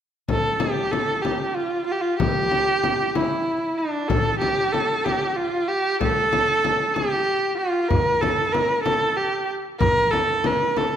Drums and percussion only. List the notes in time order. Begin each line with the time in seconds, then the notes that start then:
0.29 frame drum
0.60 frame drum
0.93 frame drum
1.25 frame drum
2.20 frame drum
2.52 frame drum
2.84 frame drum
3.15 frame drum
4.10 frame drum
4.42 frame drum
4.74 frame drum
5.06 frame drum
6.01 frame drum
6.33 frame drum
6.65 frame drum
6.96 frame drum
7.91 frame drum, tombak dum
8.23 tombak tek, frame drum
8.54 tombak tek, frame drum
8.86 tombak tek, frame drum
9.18 tombak ka
9.80 frame drum, tombak dum
10.13 tombak tek, frame drum
10.44 tombak tek, frame drum
10.77 tombak tek, frame drum